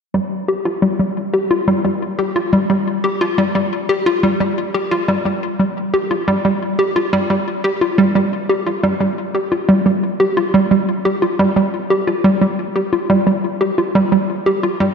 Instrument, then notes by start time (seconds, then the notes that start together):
synth arpeggio sound
0.14 G3
0.48 G4
0.65 F4
0.82 G3
0.99 G3
1.34 G4
1.51 F4
1.68 G3
1.85 G3
2.19 G4
2.36 F4
2.53 G3
2.70 G3
3.04 G4
3.21 F4
3.38 G3
3.55 G3
3.89 G4
4.06 F4
4.23 G3
4.40 G3
4.74 G4
4.91 F4
5.08 G3
5.25 G3
5.59 G3
5.94 G4
6.11 F4
6.28 G3
6.45 G3
6.79 G4
6.96 F4
7.13 G3
7.30 G3
7.64 G4
7.81 F4
7.98 G3
8.15 G3
8.49 G4
8.67 F4
8.84 G3
9.01 G3
9.35 G4
9.52 F4
9.69 G3
9.86 G3
10.20 G4
10.37 F4
10.54 G3
10.71 G3
11.05 G4
11.22 F4
11.39 G3
11.56 G3
11.90 G4
12.07 F4
12.24 G3
12.41 G3
12.76 G4
12.93 F4
13.10 G3
13.27 G3
13.61 G4
13.78 F4
13.95 G3
14.12 G3
14.46 G4
14.63 F4
14.80 G3